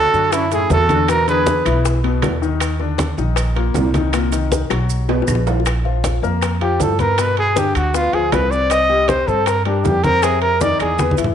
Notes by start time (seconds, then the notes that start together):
Already playing: F#4 A4
0.13 F#2 D3 D4, high conga, maracas
0.32 C#4 E4, high bongo, high conga, high timbale, claves, maracas
0.51 A2 A3 E4 G#4, high bongo, high conga, high timbale, maracas
0.70 E2 F#4 A4, high bongo, low bongo, high conga, low timbale, maracas
0.89 D3 D4, high conga, high timbale, maracas
1.08 B2 B3 F#4 A#4, high bongo, high conga, high timbale, claves, maracas
1.27 D3 D4 G#4 B4, high bongo, high conga, high timbale, maracas
1.47 high bongo, high conga, low timbale, maracas
1.65 B1 E3 E4, high timbale, claves, maracas
1.85 high bongo, high conga, maracas
2.04 B2 B3, high bongo, high conga, high timbale
2.22 D#2, high bongo, low bongo, high conga, high timbale, low timbale, claves, maracas
2.42 D#3 D#4, high bongo, maracas
2.60 high bongo, high conga, high timbale, claves, maracas
2.79 D3 D4, high bongo, high conga
2.98 high bongo, high conga, high timbale, low timbale, maracas
3.17 A#1 D#3 D#4, high conga, maracas
3.36 high bongo, high conga, high timbale, claves, maracas
3.56 A#2 A#3, high bongo, high conga, high timbale
3.74 C2, high bongo, low bongo, high conga, low timbale, maracas
3.94 D#3 D#4, high bongo, high conga, high timbale, maracas
4.13 A#2 A#3, high bongo, high conga, high timbale, claves, maracas
4.32 D#3 D#4, high bongo, high conga, high timbale, maracas
4.51 high bongo, high conga, low timbale, maracas
4.70 B1 F#3 F#4, high bongo, high timbale, claves, maracas
4.90 high conga, maracas
5.08 B2 B3, low bongo, high conga, high timbale
5.22 low bongo
5.27 A#1, high conga, high timbale, claves, maracas
5.35 low bongo
5.46 F3 F4, low timbale, maracas
5.60 low bongo
5.66 high bongo, high conga, high timbale, claves, maracas
5.84 F3 F4, high bongo, high conga
6.04 high bongo, high conga, high timbale, low timbale, maracas
6.22 F2 A#3 A#4, high conga, maracas
6.41 high bongo, high conga, high timbale, claves, maracas
6.61 F3 F4 G4, high bongo, high conga, high timbale
6.80 G2 A4, high bongo, low bongo, high conga, low timbale, maracas
6.99 B3 A#4 B4, high bongo, high conga, high timbale, maracas
7.18 B2 B3 B4, high bongo, high conga, high timbale, claves, maracas
7.37 G#4, high bongo, high conga, high timbale
7.56 D3 D4 G4, high bongo, high conga, low timbale, maracas
7.75 D2 F#4, high timbale, claves, maracas
7.94 B3 F4 B4, high bongo, high conga, maracas
8.13 D2 F3 F4 G#4, high bongo, high conga, high timbale
8.32 C2 B4, high bongo, low bongo, high conga, high timbale, low timbale, claves, maracas
8.51 C4 C5 D5, high bongo, maracas
8.70 D#5, high bongo, high conga, high timbale, claves, maracas
8.89 G3 G4, high bongo, high conga
9.08 C5, high bongo, high conga, high timbale, low timbale, maracas
9.27 G2 C4 A4 C5, high conga, maracas
9.46 A#4, high bongo, high conga, high timbale, claves, maracas
9.65 G3 D4 G4, high bongo, high conga, high timbale
9.84 F2 G4, high bongo, low bongo, high conga, low timbale, maracas
10.04 C4 A#4 C5, high bongo, high conga, high timbale, maracas
10.22 C3 C4 G#4, high bongo, high conga, high timbale, claves, maracas
10.42 A#4, high bongo, high conga, high timbale
10.61 D#3 D#4 D5, high bongo, high conga, low timbale, maracas
10.79 E2 G#4, high timbale, claves, maracas
10.98 B3 B4, high bongo, high conga, maracas
11.11 high conga
11.17 E2 E3 E4, high bongo, high timbale, maracas
11.24 low conga